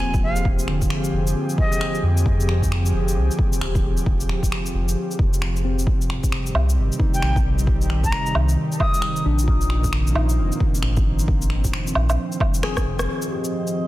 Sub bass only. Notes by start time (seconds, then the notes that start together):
0.00 D#1
1.13 F1
2.03 F2
2.93 F1
3.16 C2
3.62 D#1
4.74 F1
5.19 F1
6.54 C2
6.77 G1
7.22 A#1
8.35 C2
9.25 A#1
10.15 A#1
10.38 F1
10.83 G#1
11.95 A#1
12.85 F1